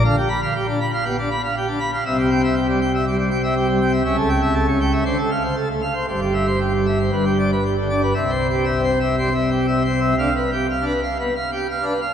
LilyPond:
<<
  \new Staff \with { instrumentName = "Pipe organ" } { \time 4/4 \key c \major \tempo 4 = 119 << { r8 b''16 r2. r16 | r8 g''16 r2. r16 | r8 g''16 r4. r16 f''16 r4 r16 | r8 e''16 r4. r16 d''16 r4 r16 |
e''8 r2. r8 | f''8 r2. r8 | } \\ { f''16 g'16 r16 f''16 g'16 d'16 b''16 f''16 g'16 d'16 b''16 f''16 g'16 d'16 b''16 f''16 | e''16 g'16 r16 e''16 g'16 g16 g''16 e''16 g'16 g16 g''16 e''16 g'16 g16 g''16 e''16 | e''16 a'16 r16 e''16 a'16 cis'16 g''16 e''16 c''16 a'16 r16 c''16 a'16 a16 f''16 c''16 | c''16 g'16 r16 c''16 g'16 g16 e''16 c''16 b'16 g'16 r16 b'16 g'16 d16 d''16 b'16 |
\tuplet 3/2 { r8 c''8 g'8 e''8 c''8 e''8 c''8 e''8 g'8 e''8 c''8 e''8 } | \tuplet 3/2 { r8 b'8 g'8 f''8 b'8 f''8 b'8 f''8 g'8 f''8 b'8 f''8 } | } >> }
  \new Staff \with { instrumentName = "Pipe organ" } { \clef bass \time 4/4 \key c \major << { d16 r4. r16 b16 r4. r16 | c2 g16 r4. r16 | cis2 d16 r4. r16 | g,2 g,4. d'16 r16 |
c4~ c16 c'16 r8 g16 r4 c'16 r8 | d16 r4 d'16 r8 b16 r4 d'16 r8 | } \\ { d,16 r2. r8. | c,1 | cis,2 d,16 r4. r16 | g,,2 g,,2 |
c,1 | d,16 r2. r8. | } >> }
>>